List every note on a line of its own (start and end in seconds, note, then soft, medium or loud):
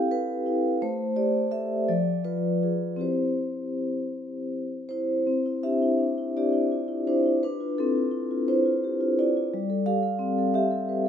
0.00 0.77 C4 medium
0.00 0.46 E4 soft
0.00 0.11 G4 medium
0.00 0.11 A4 soft
0.00 0.83 F5 medium
0.00 0.83 G5 medium
0.11 0.67 A4 soft
0.11 0.81 B4 medium
0.46 0.81 E4 soft
0.82 1.86 A3 medium
0.82 1.17 C5 medium
1.16 1.50 G4 soft
1.16 1.52 D5 medium
1.51 1.84 G4 soft
1.51 1.85 A4 soft
1.51 1.88 E5 medium
1.88 2.98 F3 medium
1.88 2.26 D5 medium
2.24 2.62 F4 soft
2.24 3.00 B4 medium
2.63 2.97 F4 soft
2.63 2.97 G#4 soft
2.96 5.21 C4 soft
2.96 4.90 E4 soft
2.96 5.22 G4 soft
3.01 4.88 C5 soft
4.89 5.45 E4 soft
4.89 5.63 C5 medium
5.27 7.36 C4 soft
5.46 5.74 E4 soft
5.63 5.92 D4 soft
5.63 6.31 G4 soft
5.63 6.35 E5 medium
5.82 6.10 E4 soft
5.98 6.27 D4 soft
6.18 6.46 E4 soft
6.37 6.64 D4 soft
6.37 7.03 G4 medium
6.37 7.06 D5 medium
6.53 6.81 E4 soft
6.72 6.88 F4 soft
6.88 7.07 E4 soft
7.07 7.34 D4 soft
7.07 7.25 E4 soft
7.07 7.41 C5 medium
7.26 7.42 E4 soft
7.43 7.75 D4 medium
7.43 7.77 B4 medium
7.61 7.87 F4 soft
7.78 8.45 C4 soft
7.78 8.05 E4 soft
7.78 8.48 A4 medium
7.95 8.23 F4 soft
8.12 8.40 E4 soft
8.31 8.59 F4 soft
8.48 9.15 E4 medium
8.48 9.19 C5 medium
8.65 8.94 F4 soft
8.84 9.01 G4 soft
9.01 9.19 F4 soft
9.19 9.46 E4 soft
9.19 9.35 F4 medium
9.19 9.87 D5 medium
9.37 9.53 F4 soft
9.54 11.09 G3 medium
9.70 9.85 A4 soft
9.86 10.14 G4 soft
9.86 10.02 A4 medium
9.86 10.56 F5 medium
10.03 10.31 A4 soft
10.19 10.48 C4 soft
10.38 10.66 A4 soft
10.54 11.09 G4 medium
10.54 11.09 E5 medium
10.71 11.00 A4 soft
10.89 11.07 B4 soft